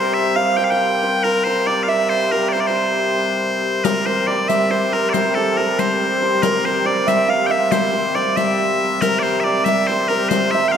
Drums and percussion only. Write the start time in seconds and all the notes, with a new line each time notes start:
3.85 riq
4.50 riq
5.14 riq
5.79 riq
6.43 riq
7.08 riq
7.72 riq
8.16 riq
8.37 riq
9.02 riq
9.66 riq
10.31 riq